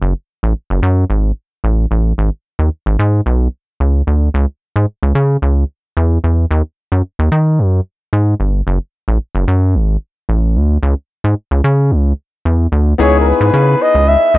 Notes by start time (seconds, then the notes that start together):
0.02 F#1
0.43 A1
0.70 F#1
0.83 F#2
1.10 G#1
1.64 A1
1.91 A1
2.18 G#1
2.59 D#2
2.86 G#1
2.99 G#2
3.26 B1
3.80 C#2
4.07 D2
4.34 C#2
4.76 G#2
5.03 C#2
5.15 C#3
5.42 C#2
5.97 E2
6.24 E2
6.51 D#2
6.92 F#2
7.19 D#2
7.32 D#3
7.59 F#2
8.13 G#2
8.40 G1
8.67 F#1
9.08 A1
9.35 F#1
9.48 F#2
9.75 G#1
10.29 A1
10.56 D2
10.83 C#2
11.24 G#2
11.51 C#2
11.64 C#3
11.91 C#2
12.45 E2
12.72 D2
12.98 C#2 B3 D#4 E4 G#4 C#5
13.20 A#4
13.28 B4
13.41 G#2
13.54 C#3
13.82 D#5
13.95 C#2
14.08 E5
14.34 C#2